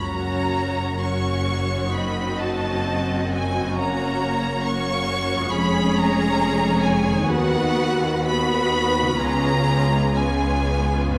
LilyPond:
<<
  \new Staff \with { instrumentName = "Violin section" } { \time 4/4 \key fis \major \tempo 4 = 65 ais''4 cis'''4 b''8 a''4 gis''8 | ais''4 cis'''4 b''8 ais''4 gis''8 | fis''4 b''4 ais''4 gis''4 | }
  \new Staff \with { instrumentName = "Violin section" } { \time 4/4 \key fis \major <fis' cis''>4 <fis' cis''>4 <fis' dis''>2 | <fis' cis''>4 <fis' cis''>4 <gis' cis''>2 | <fis' b'>4 <fis' b'>4 <eis' gis'>4 <eis' gis'>4 | }
  \new Staff \with { instrumentName = "Harp" } { \time 4/4 \key fis \major <fis, ais cis' fis'>2 <fis, c' dis' fis'>2 | <fis, ais cis' fis'>2 <eis, gis cis' gis'>2 | <dis b dis' fis'>2 <cis b eis' cis''>2 | }
  \new Staff \with { instrumentName = "Viola section" } { \time 4/4 \key fis \major <fis cis'>4 <fis cis'>4 <fis c'>2 | <ais cis'>4 <ais cis'>4 <gis cis'>2 | <b fis'>4 <b fis'>4 <b cis'>4 <b cis'>4 | }
  \new Staff \with { instrumentName = "Cello section" } { \clef bass \time 4/4 \key fis \major fis,1~ | fis,2 eis,2 | dis,2 cis,2 | }
  \new Staff \with { instrumentName = "Double bass section" } { \clef bass \time 4/4 \key fis \major fis,,1~ | fis,,2 eis,,2 | dis,2 cis,2 | }
>>